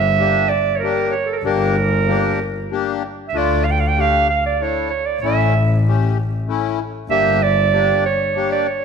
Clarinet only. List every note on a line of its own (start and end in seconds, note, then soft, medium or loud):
0.00 0.50 E5 loud
0.49 0.77 D5 medium
0.76 1.10 A#4 medium
0.76 0.81 C#5 medium
1.10 1.28 C#5 medium
1.26 1.34 A4 medium
1.33 1.44 A4 medium
1.33 1.36 A#4 medium
1.46 2.67 A#4 medium
3.28 3.39 E5 medium
3.37 3.66 D5 medium
3.64 3.73 F5 medium
3.71 3.81 G5 medium
3.80 3.90 F5 medium
3.88 4.02 G5 medium
4.01 4.29 F5 medium
4.30 4.43 F5 medium
4.46 4.64 D5 medium
4.62 4.89 C#5 medium
4.90 5.07 C#5 medium
5.06 5.21 D5 medium
5.21 5.80 E5 medium
7.11 7.44 E5 loud
7.43 8.05 D5 loud
8.05 8.49 C#5 medium
8.52 8.69 D5 medium
8.67 8.85 C#5 medium